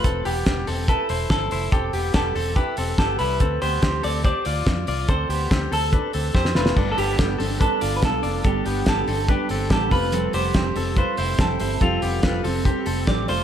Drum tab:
CC |----------------|----------------|----------------|----------------|
HH |x-o-x-o-x-o-x-o-|x-o-x-o-x-o-x-o-|x-o-x-o-x-o-x-o-|x-o-x-o-x-o-----|
SD |----o-------o---|----o-------o---|----o-------o---|----o-------oooo|
BD |o---o---o---o---|o---o---o---o---|o---o---o---o---|o---o---o---o---|

CC |x---------------|----------------|----------------|----------------|
HH |--o-x-o-x-o-x-o-|x-o-x-o-x-o-x-o-|x-o-x-o-x-o-x-o-|x-o-x-o-x-o-x-o-|
SD |----o-------o---|----o-------o---|----o-------o---|----o-------o---|
BD |o---o---o---o---|o---o---o---o-o-|----o---o---o---|o---o---o---o---|